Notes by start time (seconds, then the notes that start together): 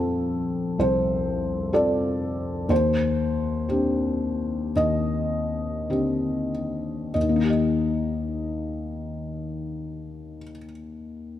Already playing: F2 C4 F4 A4
0.79 C2 C5
1.73 C4 F4 A4 D5
2.69 D#2 C5
3.69 C4 D4 G4
4.76 D#2 D#5
5.90 D3 C4 G4
7.14 D#2 D#5
7.22 D#3
7.29 A#3
7.36 D#4
7.43 G4
7.50 D#5